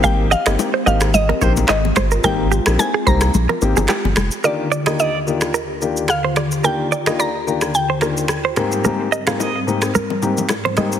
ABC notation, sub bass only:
X:1
M:4/4
L:1/16
Q:"Swing 16ths" 1/4=109
K:Eb
V:1 name="Sub bass" clef=bass
A,,,3 G,,, z2 A,,,4 B,,,2 A,,,2 G,,,2 | A,,,3 B,,, z2 C,,2 B,,, z A,,, G,,, z G,,, F,,, z | z16 | z16 |
z16 |]